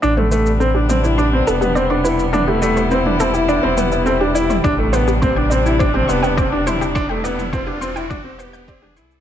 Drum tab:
SH |x-xxx-xxx-xxx-xx|x-xxx-xxx-xxx-xx|x-xxx-xxx-xxx-xx|x-xxx-xxx-xxx-xx|
T2 |-o----o----o----|o----o----o----o|----o----o----o-|---o----o----o--|
BD |----------------|----------------|o---o---o---o---|o---o---o---o---|